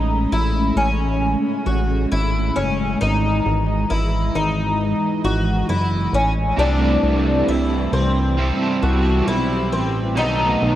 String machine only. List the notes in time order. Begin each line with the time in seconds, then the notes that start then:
Already playing: G#3 A3 C#4
3.00 E3 D#5
6.58 G3 A3 C4 E4
8.37 B4
10.17 A3 D#4